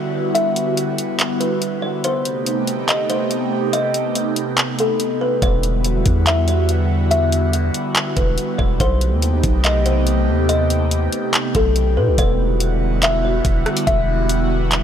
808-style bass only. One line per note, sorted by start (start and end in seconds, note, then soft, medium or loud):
5.42 6.03 E1 loud
6.06 7.71 E2 loud
8.17 8.37 E1 loud
8.59 8.79 E1 loud
8.80 9.13 B1 loud
9.12 9.42 D#2 loud
9.44 10.29 B1 loud
10.28 11.09 D#2 loud
11.55 11.99 B1 loud
11.97 12.09 B2 loud
12.08 12.18 B1 loud
12.18 13.41 E1 loud
13.45 13.65 E1 loud
13.87 14.83 E1 loud